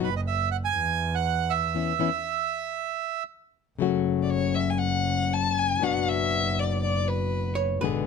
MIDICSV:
0, 0, Header, 1, 6, 480
1, 0, Start_track
1, 0, Tempo, 504202
1, 1666, Time_signature, 4, 2, 24, 8
1, 7679, End_track
2, 0, Start_track
2, 0, Title_t, "Bandoneon"
2, 0, Program_c, 0, 23
2, 32, Note_on_c, 0, 71, 67
2, 136, Note_off_c, 0, 71, 0
2, 154, Note_on_c, 0, 75, 62
2, 198, Note_off_c, 0, 75, 0
2, 259, Note_on_c, 0, 76, 78
2, 469, Note_off_c, 0, 76, 0
2, 489, Note_on_c, 0, 78, 72
2, 539, Note_off_c, 0, 78, 0
2, 614, Note_on_c, 0, 80, 88
2, 1093, Note_on_c, 0, 78, 80
2, 1095, Note_off_c, 0, 80, 0
2, 1427, Note_on_c, 0, 76, 69
2, 1449, Note_off_c, 0, 78, 0
2, 3079, Note_off_c, 0, 76, 0
2, 7679, End_track
3, 0, Start_track
3, 0, Title_t, "Violin"
3, 0, Program_c, 1, 40
3, 4020, Note_on_c, 1, 74, 58
3, 4091, Note_on_c, 1, 73, 88
3, 4105, Note_off_c, 1, 74, 0
3, 4330, Note_on_c, 1, 76, 76
3, 4344, Note_off_c, 1, 73, 0
3, 4473, Note_on_c, 1, 80, 68
3, 4488, Note_off_c, 1, 76, 0
3, 4554, Note_on_c, 1, 78, 87
3, 4568, Note_off_c, 1, 80, 0
3, 5078, Note_on_c, 1, 81, 100
3, 5092, Note_off_c, 1, 78, 0
3, 5318, Note_on_c, 1, 80, 91
3, 5332, Note_off_c, 1, 81, 0
3, 5553, Note_on_c, 1, 78, 89
3, 5567, Note_off_c, 1, 80, 0
3, 5791, Note_on_c, 1, 76, 105
3, 5805, Note_off_c, 1, 78, 0
3, 6275, Note_on_c, 1, 74, 87
3, 6289, Note_off_c, 1, 76, 0
3, 6497, Note_off_c, 1, 74, 0
3, 6502, Note_on_c, 1, 74, 89
3, 6743, Note_on_c, 1, 71, 74
3, 6757, Note_off_c, 1, 74, 0
3, 7209, Note_off_c, 1, 71, 0
3, 7679, End_track
4, 0, Start_track
4, 0, Title_t, "Hollow-body jazz guitar"
4, 0, Program_c, 2, 26
4, 7190, Note_on_c, 2, 73, 92
4, 7416, Note_off_c, 2, 73, 0
4, 7436, Note_on_c, 2, 71, 101
4, 7679, Note_off_c, 2, 71, 0
4, 7679, End_track
5, 0, Start_track
5, 0, Title_t, "Nylon-string guitar"
5, 0, Program_c, 3, 24
5, 4, Note_on_c, 3, 66, 66
5, 85, Note_off_c, 3, 66, 0
5, 1659, Note_on_c, 3, 52, 47
5, 1669, Note_on_c, 3, 59, 50
5, 1671, Note_on_c, 3, 61, 50
5, 1674, Note_on_c, 3, 64, 52
5, 1824, Note_off_c, 3, 52, 0
5, 1829, Note_off_c, 3, 59, 0
5, 1830, Note_off_c, 3, 61, 0
5, 1831, Note_off_c, 3, 64, 0
5, 1897, Note_on_c, 3, 52, 65
5, 1900, Note_on_c, 3, 59, 60
5, 1907, Note_on_c, 3, 61, 72
5, 1909, Note_on_c, 3, 64, 66
5, 1987, Note_off_c, 3, 52, 0
5, 1988, Note_off_c, 3, 59, 0
5, 1992, Note_off_c, 3, 61, 0
5, 1993, Note_off_c, 3, 64, 0
5, 3604, Note_on_c, 3, 49, 70
5, 3617, Note_on_c, 3, 54, 66
5, 3621, Note_on_c, 3, 57, 70
5, 3634, Note_on_c, 3, 61, 78
5, 3637, Note_on_c, 3, 66, 78
5, 5520, Note_off_c, 3, 49, 0
5, 5521, Note_off_c, 3, 54, 0
5, 5523, Note_on_c, 3, 47, 66
5, 5528, Note_off_c, 3, 57, 0
5, 5533, Note_on_c, 3, 54, 64
5, 5535, Note_off_c, 3, 61, 0
5, 5536, Note_off_c, 3, 66, 0
5, 5542, Note_on_c, 3, 59, 75
5, 5545, Note_on_c, 3, 62, 82
5, 5555, Note_on_c, 3, 66, 80
5, 7424, Note_off_c, 3, 47, 0
5, 7429, Note_off_c, 3, 54, 0
5, 7433, Note_off_c, 3, 59, 0
5, 7434, Note_on_c, 3, 47, 76
5, 7435, Note_off_c, 3, 62, 0
5, 7440, Note_off_c, 3, 66, 0
5, 7447, Note_on_c, 3, 50, 74
5, 7457, Note_on_c, 3, 56, 75
5, 7463, Note_on_c, 3, 59, 82
5, 7467, Note_on_c, 3, 68, 81
5, 7679, Note_off_c, 3, 47, 0
5, 7679, Note_off_c, 3, 50, 0
5, 7679, Note_off_c, 3, 56, 0
5, 7679, Note_off_c, 3, 59, 0
5, 7679, Note_off_c, 3, 68, 0
5, 7679, End_track
6, 0, Start_track
6, 0, Title_t, "Double bass"
6, 0, Program_c, 4, 43
6, 0, Note_on_c, 4, 30, 76
6, 674, Note_off_c, 4, 30, 0
6, 710, Note_on_c, 4, 40, 79
6, 1618, Note_off_c, 4, 40, 0
6, 3611, Note_on_c, 4, 30, 62
6, 5437, Note_off_c, 4, 30, 0
6, 5523, Note_on_c, 4, 30, 71
6, 7338, Note_off_c, 4, 30, 0
6, 7433, Note_on_c, 4, 32, 66
6, 7679, Note_off_c, 4, 32, 0
6, 7679, End_track
0, 0, End_of_file